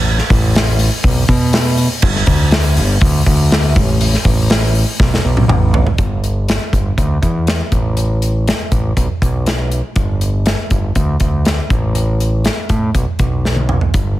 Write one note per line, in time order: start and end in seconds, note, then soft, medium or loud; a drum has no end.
0.00 0.20 A1 medium
0.18 snare soft
0.30 0.88 A1 medium
0.30 kick medium
0.30 open hi-hat medium
0.55 snare loud
0.55 open hi-hat medium
0.79 open hi-hat medium
1.03 1.23 B1 loud
1.03 kick loud
1.03 open hi-hat medium
1.28 1.87 B2 medium
1.28 kick medium
1.28 open hi-hat medium
1.53 snare loud
1.53 open hi-hat medium
1.77 open hi-hat medium
2.02 2.22 G1 loud
2.02 kick loud
2.02 crash loud
2.16 snare soft
2.26 2.79 D2 medium
2.26 kick medium
2.26 open hi-hat medium
2.51 snare loud
2.51 open hi-hat medium
2.77 2.96 G1 medium
2.77 open hi-hat medium
3.00 3.21 D2 loud
3.00 kick loud
3.00 open hi-hat medium
3.26 3.78 D2 medium
3.26 kick medium
3.26 open hi-hat medium
3.51 snare loud
3.51 open hi-hat medium
3.76 4.15 A1 medium
3.76 kick loud
3.76 open hi-hat medium
4.01 open hi-hat medium
4.14 snare soft
4.25 4.83 A1 medium
4.25 kick medium
4.25 open hi-hat medium
4.50 snare loud
4.50 open hi-hat medium
4.75 open hi-hat medium
5.00 5.19 B1 medium
5.00 kick loud
5.00 snare medium
5.14 snare medium
5.24 5.44 B1 medium
5.37 mid tom medium
5.48 5.87 A1 loud
5.48 mid tom medium
5.74 floor tom loud
5.87 floor tom medium
5.98 6.57 G1 medium
5.98 kick loud
5.98 closed hi-hat medium
6.24 closed hi-hat medium
6.49 snare loud
6.49 closed hi-hat medium
6.73 6.92 G1 medium
6.73 kick medium
6.73 closed hi-hat medium
6.98 7.17 D2 medium
6.98 kick medium
6.98 closed hi-hat medium
7.22 7.61 E2 medium
7.22 kick medium
7.22 closed hi-hat medium
7.47 snare medium
7.47 closed hi-hat medium
7.72 8.50 A1 medium
7.72 kick medium
7.72 closed hi-hat soft
7.97 closed hi-hat medium
8.22 closed hi-hat medium
8.48 snare medium
8.48 closed hi-hat medium
8.71 8.91 A1 medium
8.71 kick medium
8.71 closed hi-hat medium
8.97 9.07 B1 medium
8.97 kick medium
8.97 closed hi-hat medium
9.22 9.80 B1 medium
9.22 kick medium
9.22 closed hi-hat medium
9.46 snare medium
9.46 closed hi-hat medium
9.72 closed hi-hat medium
9.96 10.54 G1 medium
9.96 kick loud
9.96 closed hi-hat medium
10.21 closed hi-hat medium
10.46 snare medium
10.46 closed hi-hat medium
10.70 10.90 G1 medium
10.70 kick medium
10.70 closed hi-hat medium
10.95 11.15 D2 medium
10.95 kick medium
10.95 closed hi-hat medium
11.20 11.59 D2 medium
11.20 kick medium
11.20 closed hi-hat medium
11.45 snare medium
11.45 closed hi-hat medium
11.70 12.48 A1 medium
11.70 kick medium
11.70 closed hi-hat soft
11.95 closed hi-hat medium
12.20 closed hi-hat medium
12.45 snare medium
12.45 closed hi-hat medium
12.69 12.89 A2 medium
12.69 kick medium
12.69 closed hi-hat medium
12.94 13.04 B1 medium
12.94 kick medium
12.94 closed hi-hat medium
13.19 13.78 B1 medium
13.19 kick medium
13.19 closed hi-hat medium
13.45 snare medium
13.56 high tom soft
13.69 mid tom medium
13.81 floor tom medium
13.94 14.20 G1 medium
13.94 kick medium
13.94 closed hi-hat medium